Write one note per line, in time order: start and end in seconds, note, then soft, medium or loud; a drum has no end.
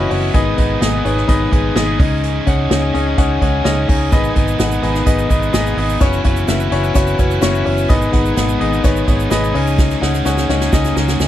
0.00 0.36 C#3 medium
0.00 0.32 E3 medium
0.00 0.33 B3 medium
0.00 0.10 C#4 loud
0.00 0.35 C#4 soft
0.00 0.10 E4 loud
0.00 0.35 E4 medium
0.00 0.10 F#4 loud
0.00 0.33 F#4 medium
0.00 0.10 B4 loud
0.00 0.34 B4 medium
0.00 0.11 C#5 loud
0.00 0.34 D#5 loud
0.00 0.36 F#5 medium
0.00 0.31 C#6 medium
0.10 0.30 F#1 medium
0.10 0.29 C#4 medium
0.10 0.29 E4 medium
0.10 0.29 F#4 medium
0.10 0.29 B4 medium
0.10 0.29 C#5 loud
0.10 open hi-hat medium
0.34 0.54 G#1 medium
0.34 1.01 G#2 medium
0.34 1.98 B2 medium
0.34 1.01 D#3 medium
0.34 0.57 G#3 medium
0.34 4.09 G#3 medium
0.34 0.53 B3 loud
0.34 0.58 B3 medium
0.34 0.53 D#4 loud
0.34 5.97 D#4 medium
0.34 0.59 D#4 medium
0.34 0.53 G#4 loud
0.34 0.59 G#4 medium
0.34 0.53 B4 loud
0.34 0.53 D#5 loud
0.34 kick loud
0.34 closed hi-hat medium
0.57 0.77 G#1 medium
0.57 0.93 G#3 medium
0.57 0.76 B3 medium
0.57 0.94 B3 medium
0.57 0.76 D#4 medium
0.57 0.93 D#4 medium
0.57 0.76 G#4 medium
0.57 0.76 B4 medium
0.57 0.76 D#5 loud
0.57 kick medium
0.57 closed hi-hat medium
0.61 0.92 G#4 medium
0.81 1.01 G#1 medium
0.81 1.00 B3 medium
0.81 1.00 D#4 medium
0.81 1.00 G#4 medium
0.81 1.00 B4 medium
0.81 1.00 D#5 loud
0.81 snare loud
0.81 closed hi-hat medium
0.93 1.17 G#3 medium
0.93 1.16 B3 medium
0.93 1.16 D#4 medium
0.93 1.15 G#4 medium
1.04 1.25 G#1 loud
1.04 1.23 B3 loud
1.04 1.23 D#4 medium
1.04 1.23 G#4 medium
1.04 1.24 B4 loud
1.04 1.24 C#5 loud
1.04 closed hi-hat medium
1.16 1.53 G#2 medium
1.16 1.53 D#3 medium
1.16 1.51 G#3 medium
1.16 1.52 B3 medium
1.16 1.53 D#4 medium
1.16 1.52 G#4 medium
1.16 snare soft
1.28 1.48 G#1 medium
1.28 1.47 B3 loud
1.28 1.47 D#4 loud
1.28 1.47 G#4 loud
1.28 1.47 B4 loud
1.28 1.47 D#5 loud
1.28 kick medium
1.28 closed hi-hat medium
1.52 1.72 G#1 loud
1.52 1.88 G#3 medium
1.52 1.71 B3 loud
1.52 1.88 B3 medium
1.52 1.71 D#4 medium
1.52 1.87 D#4 medium
1.52 1.71 G#4 medium
1.52 1.86 G#4 medium
1.52 1.71 B4 medium
1.52 1.71 D#5 medium
1.52 kick medium
1.52 closed hi-hat medium
1.76 1.95 G#1 loud
1.76 1.94 B3 loud
1.76 1.94 D#4 loud
1.76 1.94 G#4 loud
1.76 1.95 B4 loud
1.76 1.95 D#5 loud
1.76 snare medium
1.76 closed hi-hat medium
1.87 1.99 G#3 soft
1.87 2.00 B3 medium
1.87 2.00 D#4 medium
1.87 1.99 G#4 medium
1.99 2.39 C#2 medium
1.99 2.66 G#2 medium
1.99 2.47 C#3 medium
1.99 4.11 C#3 medium
1.99 2.46 G#3 medium
1.99 2.37 C#4 medium
1.99 2.46 C#4 loud
1.99 2.37 D#4 medium
1.99 2.48 D#4 medium
1.99 2.37 G#4 medium
1.99 2.49 G#4 medium
1.99 2.37 C#5 medium
1.99 2.38 D#5 loud
1.99 kick loud
1.99 open hi-hat medium
2.24 closed hi-hat medium
2.46 2.67 C#2 medium
2.46 2.82 G#3 medium
2.46 2.65 C#4 medium
2.46 2.83 C#4 medium
2.46 2.65 D#4 medium
2.46 2.83 D#4 medium
2.46 2.65 G#4 medium
2.46 2.81 G#4 medium
2.46 2.65 C#5 medium
2.46 2.66 F#5 loud
2.46 kick medium
2.46 closed hi-hat medium
2.70 2.90 C#2 loud
2.70 2.89 C#4 medium
2.70 2.89 D#4 medium
2.70 2.89 G#4 medium
2.70 2.89 C#5 medium
2.70 2.89 D#5 loud
2.70 snare loud
2.70 closed hi-hat medium
2.82 3.06 C#4 medium
2.82 3.06 D#4 medium
2.82 3.05 G#4 medium
2.94 3.14 C#2 loud
2.94 3.12 C#4 loud
2.94 3.13 D#4 medium
2.94 3.13 G#4 medium
2.94 3.13 C#5 medium
2.94 3.13 D#5 loud
2.94 closed hi-hat medium
3.06 3.43 C#3 medium
3.06 3.40 G#3 medium
3.06 3.41 C#4 medium
3.06 3.42 D#4 medium
3.06 3.42 G#4 medium
3.17 3.37 C#2 medium
3.17 3.36 C#4 loud
3.17 3.36 D#4 loud
3.17 3.36 G#4 medium
3.17 3.36 C#5 loud
3.17 3.36 F#5 loud
3.17 kick medium
3.17 closed hi-hat medium
3.41 3.61 C#2 medium
3.41 3.77 G#3 medium
3.41 3.60 C#4 medium
3.41 3.77 C#4 medium
3.41 3.60 D#4 medium
3.41 3.77 D#4 medium
3.41 3.60 G#4 medium
3.41 3.75 G#4 medium
3.41 3.60 C#5 medium
3.41 3.60 F#5 medium
3.41 kick medium
3.41 closed hi-hat medium
3.64 3.84 C#2 medium
3.64 3.83 C#4 loud
3.64 3.83 D#4 loud
3.64 3.83 G#4 loud
3.64 3.83 C#5 loud
3.64 3.84 D#5 loud
3.64 snare loud
3.64 closed hi-hat medium
3.77 4.13 C#4 soft
3.77 4.13 D#4 soft
3.77 4.12 G#4 medium
3.88 4.08 C#2 medium
3.88 4.07 C#4 medium
3.88 4.07 D#4 medium
3.88 4.07 G#4 medium
3.88 4.07 C#5 medium
3.88 4.07 D#5 medium
3.88 kick loud
3.88 open hi-hat medium
4.12 4.32 G#1 loud
4.12 4.79 G#2 medium
4.12 6.00 B2 medium
4.12 4.79 D#3 medium
4.12 4.34 G#3 medium
4.12 5.99 G#3 medium
4.12 4.31 B3 loud
4.12 4.35 B3 medium
4.12 4.31 D#4 loud
4.12 4.36 D#4 medium
4.12 4.31 G#4 loud
4.12 4.37 G#4 medium
4.12 4.31 B4 loud
4.12 4.31 D#5 loud
4.12 kick loud
4.12 closed hi-hat medium
4.12 shaker soft
4.24 shaker medium
4.35 4.55 G#1 medium
4.35 4.71 G#3 medium
4.35 4.54 B3 medium
4.35 4.72 B3 medium
4.35 4.54 D#4 medium
4.35 4.71 D#4 medium
4.35 4.54 G#4 medium
4.35 4.69 G#4 medium
4.35 4.54 B4 medium
4.35 4.54 D#5 medium
4.35 kick medium
4.35 closed hi-hat medium
4.48 shaker medium
4.59 4.79 G#1 medium
4.59 4.78 B3 medium
4.59 4.78 D#4 medium
4.59 4.78 G#4 medium
4.59 4.78 B4 medium
4.59 4.78 F#5 loud
4.59 snare loud
4.59 closed hi-hat medium
4.59 shaker medium
4.71 4.95 G#3 soft
4.71 4.94 B3 medium
4.71 4.94 D#4 medium
4.71 4.93 G#4 medium
4.71 shaker medium
4.82 5.02 G#1 medium
4.82 5.01 B3 medium
4.82 5.01 D#4 medium
4.82 5.02 G#4 medium
4.82 5.02 B4 medium
4.82 5.02 D#5 loud
4.82 closed hi-hat medium
4.95 5.31 G#2 medium
4.95 5.31 D#3 medium
4.95 5.28 G#3 medium
4.95 5.30 B3 medium
4.95 5.30 D#4 medium
4.95 5.30 G#4 medium
4.95 snare soft
4.95 shaker soft
5.06 5.26 G#1 medium
5.06 5.25 B3 loud
5.06 5.25 D#4 loud
5.06 5.25 G#4 loud
5.06 5.25 B4 medium
5.06 5.25 D#5 loud
5.06 kick medium
5.06 closed hi-hat medium
5.06 shaker medium
5.19 shaker medium
5.29 5.50 G#1 loud
5.29 5.65 G#3 medium
5.29 5.48 B3 medium
5.29 5.66 B3 medium
5.29 5.49 D#4 medium
5.29 5.66 D#4 medium
5.29 5.49 G#4 medium
5.29 5.64 G#4 medium
5.29 5.49 B4 medium
5.29 5.49 D#5 medium
5.29 kick medium
5.29 closed hi-hat medium
5.29 shaker medium
5.43 shaker medium
5.53 5.73 G#1 loud
5.53 5.72 B3 loud
5.53 5.72 D#4 loud
5.53 5.72 G#4 loud
5.53 5.72 B4 loud
5.53 5.73 D#5 loud
5.53 snare medium
5.53 closed hi-hat medium
5.53 shaker medium
5.66 6.00 G#3 soft
5.66 6.01 B3 soft
5.66 6.02 D#4 medium
5.66 6.01 G#4 medium
5.66 shaker soft
5.77 5.97 G#1 loud
5.77 5.96 B3 medium
5.77 5.96 D#4 medium
5.77 5.96 G#4 medium
5.77 5.96 B4 medium
5.77 5.96 D#5 loud
5.77 open hi-hat medium
5.89 shaker medium
6.00 6.20 F#1 medium
6.00 6.68 C#3 medium
6.00 7.88 E3 medium
6.00 6.22 F#3 medium
6.00 7.88 B3 medium
6.00 6.19 C#4 loud
6.00 6.24 C#4 medium
6.00 6.19 E4 loud
6.00 6.24 E4 medium
6.00 6.19 F#4 loud
6.00 7.88 F#4 medium
6.00 6.20 B4 loud
6.00 6.25 B4 medium
6.00 6.20 C#5 loud
6.00 kick loud
6.00 closed hi-hat medium
6.00 shaker medium
6.13 shaker medium
6.24 6.44 F#1 medium
6.24 6.60 F#3 medium
6.24 6.43 C#4 medium
6.24 6.60 C#4 medium
6.24 6.43 E4 medium
6.24 6.60 E4 medium
6.24 6.43 F#4 medium
6.24 6.43 B4 medium
6.24 6.58 B4 medium
6.24 6.43 C#5 loud
6.24 kick medium
6.24 closed hi-hat medium
6.36 shaker medium
6.48 6.67 F#1 medium
6.48 6.66 C#4 medium
6.48 6.67 E4 medium
6.48 6.67 F#4 medium
6.48 6.67 B4 medium
6.48 6.67 E5 loud
6.48 snare loud
6.48 closed hi-hat medium
6.48 shaker medium
6.59 6.84 C#4 soft
6.59 6.83 E4 medium
6.59 6.82 B4 medium
6.59 shaker medium
6.71 6.91 F#1 loud
6.71 6.90 C#4 loud
6.71 6.90 E4 medium
6.71 6.90 F#4 medium
6.71 6.90 B4 medium
6.71 6.90 C#5 loud
6.71 closed hi-hat medium
6.83 7.17 F#3 medium
6.83 7.19 C#4 medium
6.83 7.19 E4 medium
6.83 7.19 B4 medium
6.83 shaker soft
6.94 7.15 F#1 loud
6.94 7.13 C#4 loud
6.94 7.14 E4 loud
6.94 7.14 F#4 loud
6.94 7.14 B4 loud
6.94 7.14 C#5 loud
6.94 kick medium
6.94 closed hi-hat medium
6.94 shaker medium
7.07 shaker medium
7.18 7.38 F#1 medium
7.18 7.54 F#3 medium
7.18 7.37 C#4 medium
7.18 7.55 C#4 medium
7.18 7.37 E4 medium
7.18 7.54 E4 medium
7.18 7.37 F#4 medium
7.18 7.38 B4 medium
7.18 7.53 B4 medium
7.18 7.38 C#5 loud
7.18 kick medium
7.18 closed hi-hat medium
7.18 shaker medium
7.31 shaker medium
7.41 7.62 F#1 loud
7.41 7.61 C#4 loud
7.41 7.61 E4 loud
7.41 7.61 F#4 loud
7.41 7.61 B4 loud
7.41 7.61 C#5 loud
7.41 snare loud
7.41 closed hi-hat medium
7.41 shaker medium
7.54 7.90 C#4 soft
7.54 7.90 E4 medium
7.54 7.90 B4 medium
7.54 shaker medium
7.65 7.86 F#1 medium
7.65 7.84 C#4 medium
7.65 7.84 E4 medium
7.65 7.84 F#4 medium
7.65 7.84 B4 medium
7.65 7.84 C#5 loud
7.65 open hi-hat medium
7.78 shaker medium
7.89 8.09 G#1 loud
7.89 8.56 G#2 medium
7.89 9.54 B2 medium
7.89 8.56 D#3 medium
7.89 8.11 G#3 medium
7.89 9.54 G#3 medium
7.89 8.08 B3 loud
7.89 8.13 B3 medium
7.89 8.08 D#4 medium
7.89 11.28 D#4 medium
7.89 8.14 D#4 medium
7.89 8.08 G#4 medium
7.89 8.15 G#4 medium
7.89 8.08 B4 loud
7.89 8.08 D#5 loud
7.89 kick loud
7.89 closed hi-hat medium
7.89 shaker medium
8.02 shaker medium
8.12 8.33 G#1 medium
8.12 8.48 G#3 medium
8.12 8.31 B3 medium
8.12 8.49 B3 medium
8.12 8.31 D#4 medium
8.12 8.49 D#4 medium
8.12 8.31 G#4 medium
8.12 8.47 G#4 medium
8.12 8.32 B4 medium
8.12 8.32 F#5 loud
8.12 kick medium
8.12 closed hi-hat medium
8.25 shaker soft
8.36 8.56 G#1 loud
8.36 8.55 B3 medium
8.36 8.55 D#4 medium
8.36 8.55 G#4 medium
8.36 8.55 B4 medium
8.36 8.55 F#5 loud
8.36 snare loud
8.36 closed hi-hat medium
8.36 shaker medium
8.48 8.72 G#3 medium
8.48 8.72 B3 medium
8.48 8.72 D#4 medium
8.48 8.71 G#4 medium
8.48 shaker medium
8.60 8.80 G#1 loud
8.60 8.79 B3 loud
8.60 8.79 D#4 medium
8.60 8.79 G#4 loud
8.60 8.79 B4 medium
8.60 8.79 D#5 loud
8.60 closed hi-hat medium
8.72 9.09 G#2 medium
8.72 9.09 D#3 medium
8.72 9.06 G#3 medium
8.72 9.07 B3 medium
8.72 9.08 D#4 medium
8.72 9.08 G#4 medium
8.72 shaker soft
8.84 9.04 G#1 loud
8.84 9.02 B3 loud
8.84 9.02 D#4 loud
8.84 9.03 G#4 medium
8.84 9.03 B4 loud
8.84 9.03 C#5 loud
8.84 kick medium
8.84 closed hi-hat medium
8.84 shaker medium
8.96 shaker medium
9.07 9.27 G#1 loud
9.07 9.43 G#3 medium
9.07 9.26 B3 medium
9.07 9.43 B3 medium
9.07 9.26 D#4 medium
9.07 9.42 D#4 medium
9.07 9.26 G#4 medium
9.07 9.41 G#4 medium
9.07 9.26 B4 medium
9.07 9.26 C#5 medium
9.07 kick medium
9.07 closed hi-hat medium
9.07 shaker soft
9.20 shaker medium
9.30 9.51 G#1 loud
9.30 9.49 B3 loud
9.30 9.49 D#4 loud
9.30 9.50 G#4 loud
9.30 9.50 B4 loud
9.30 9.50 D#5 loud
9.30 snare loud
9.30 closed hi-hat medium
9.30 shaker medium
9.43 9.54 G#3 medium
9.43 9.56 B3 medium
9.43 9.55 D#4 medium
9.43 9.55 G#4 medium
9.43 shaker medium
9.54 9.93 C#2 medium
9.54 10.22 G#2 medium
9.54 10.02 C#3 medium
9.54 11.28 C#3 medium
9.54 11.28 G#3 medium
9.54 10.01 G#3 medium
9.54 9.92 C#4 loud
9.54 10.02 C#4 medium
9.54 9.92 D#4 medium
9.54 10.03 D#4 loud
9.54 9.93 G#4 medium
9.54 10.04 G#4 loud
9.54 9.93 C#5 medium
9.54 9.93 D#5 loud
9.54 open hi-hat medium
9.67 shaker soft
9.78 kick loud
9.78 snare medium
9.78 shaker medium
9.90 snare medium
9.90 shaker medium
10.01 10.21 C#2 loud
10.01 10.37 G#3 medium
10.01 10.20 C#4 medium
10.01 10.38 C#4 medium
10.01 10.20 D#4 medium
10.01 10.38 D#4 medium
10.01 10.20 G#4 medium
10.01 10.36 G#4 medium
10.01 10.21 C#5 medium
10.01 10.21 F#5 loud
10.01 snare medium
10.14 snare medium
10.14 shaker medium
10.25 10.45 C#2 loud
10.25 10.44 C#4 medium
10.25 10.44 D#4 medium
10.25 10.44 G#4 medium
10.25 10.44 C#5 medium
10.25 10.44 F#5 loud
10.25 snare medium
10.25 shaker medium
10.37 10.61 C#4 medium
10.37 10.60 D#4 medium
10.37 10.59 G#4 medium
10.37 snare medium
10.37 shaker medium
10.49 10.68 C#2 loud
10.49 10.68 C#4 loud
10.49 10.68 D#4 medium
10.49 10.68 G#4 medium
10.49 10.68 C#5 medium
10.49 10.68 F#5 loud
10.49 snare medium
10.61 10.97 C#3 medium
10.61 10.95 G#3 medium
10.61 10.96 C#4 medium
10.61 10.97 D#4 medium
10.61 10.96 G#4 medium
10.61 snare medium
10.61 shaker soft
10.73 10.92 C#2 medium
10.73 10.91 C#4 loud
10.73 10.91 D#4 loud
10.73 10.92 G#4 medium
10.73 10.92 C#5 loud
10.73 10.92 D#5 loud
10.73 kick medium
10.73 snare medium
10.73 shaker medium
10.84 snare medium
10.84 shaker medium
10.96 11.16 C#2 loud
10.96 11.28 G#3 medium
10.96 11.28 C#4 medium
10.96 11.28 D#4 medium
10.96 11.28 G#4 medium
10.96 11.19 D#5 medium
10.96 11.19 A#5 medium
10.96 snare medium
10.96 shaker medium
11.08 11.19 F#5 medium
11.08 snare medium
11.08 shaker medium
11.20 11.28 C#2 loud
11.20 11.28 D#5 medium
11.20 11.28 G#5 medium
11.20 snare medium
11.20 shaker medium